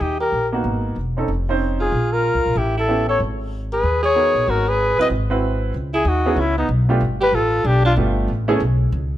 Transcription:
0.00 D#2 D#4 G4
0.20 G4 A#4
0.32 A#1
0.52 A#3 B3 D#4 F#4
0.64 G#1
0.96 E1
1.17 C4 C#4 D#4 A4
1.28 F1
1.49 C4 C#4 D#4 C5
1.80 F4 G#4
1.92 A#1
2.12 F4 A#4
2.35 C#2
2.45 A#1
2.55 A1 E4 G4
2.77 E4 A4
2.88 B3 C#4 E4 G4
3.09 A4 C#5
3.20 G#1
3.73 G#4 B4
3.83 D#2
4.03 G#4 C#5
4.15 B3 D#4 F#4 A#4
4.35 A#1
4.48 G#1 F#4 A#4
4.69 G#4 B4
4.98 G1 C4 E4 F#4 B4 D#5
5.10 G#1
5.30 C4 E4 F#4 B4
5.74 C#2
5.94 E4 G#4
6.05 D#2 D#4 F#4
6.26 B3 C#4 D#4 E4 G#4
6.36 C#2 C#4 E4
6.58 B3 D#4
6.69 B1
6.89 A3 B3 D4 F4 G4
7.01 G1
7.21 G4 B4
7.32 A1 F4 A4
7.64 B1 D4 G4
7.85 D4 F4
7.96 G1 A3 B3 D4 F4 G4
8.28 A1
8.48 A3 B3 C#4 E4 G#4
8.60 B1
8.92 C#2

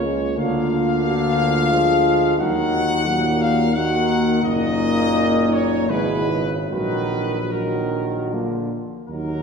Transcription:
Already playing: C#2 F3 F4 C#5
0.04 G#3
0.36 D2 D3 A#3 F4 F5
0.71 D3
1.03 A#3 F#4
1.37 F4
1.71 F3 G#3
2.37 D#2 D#3 F#3 D#4 F#5
3.05 A#2 A#3 F#4
3.40 F5
3.74 D#3 A#3 F#4 F#5
4.43 F#1 A#2 A#3 D#4 D#5
5.53 C#5
5.88 G#1 B2 G#3 E4 B4
6.29 C#3
6.70 A#1 D#3 F#3 F#4 B4
7.52 D#3 F#3 F#4 A#4
8.33 D3 A#3 F4
9.08 D#2 F#3 D#4 A#4

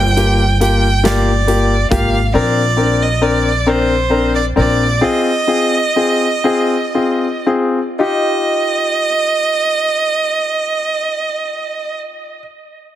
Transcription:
Already playing: G1 G5
0.17 A#3 F4 G4, closed hi-hat
0.60 A#3 F4 G4 G5, closed hi-hat
1.04 A#3 F4 G4 D5, snare, closed hi-hat
1.47 A#3 F4 G4, closed hi-hat
1.91 G#1 A#3 F4 G4 F5, kick, closed hi-hat
2.34 A#1 C4 D4 A#4 D5
2.77 C4 D4 A#4
3.03 D#5
3.21 C4 D4 A#4 D5
3.67 C4 D4 A#4 C5
4.10 C4 D4 A#4
4.35 D5
4.56 A#1 C4 D4 A#4 D5
5.01 C4 F4 G#4 D#5
5.47 C4 F4 G#4
5.96 C4 F4 G#4
6.44 C4 F4 G#4
6.95 C4 F4 G#4
7.46 C4 F4 G#4
7.99 D#4 F4 G4 D#5

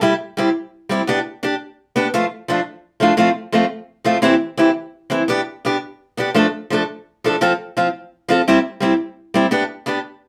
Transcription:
0.01 G3 E4 G4, muted steel-string acoustic guitar stroke
0.37 G3 C4 E4 G4
0.89 G3 C4 E4 G4
1.07 B3 D4 G4
1.43 D4 G4, muted steel-string acoustic guitar stroke
1.96 B3 D4 G4
2.14 F3 A3 F4, muted steel-string acoustic guitar stroke
2.48 F3 A3 D4 F4
3.00 F3 A3 D4 F4
3.17 F3 A3 C4 F4
3.52 F3 A3 C4 F4
4.05 F3 A3 C4 F4
4.22 E3 C4 E4 G4
4.57 E3 C4 E4 G4
5.10 E3 C4 E4, muted steel-string acoustic guitar stroke
5.28 B3 D4 G4
5.65 B3 D4 G4
6.17 B3 D4 G4
6.34 F3 A3 D4 A4
6.70 F3 A3 D4 A4
7.24 F3 A3 D4 A4
7.41 F3 C4 F4 A4
7.77 F3 C4 F4
8.29 F3 C4 F4 A4
8.48 G3 C4 E4 G4
8.80 G3 C4 E4 G4
9.34 G3 C4 E4 G4
9.51 B3 D4 G4
9.86 B3 D4 G4

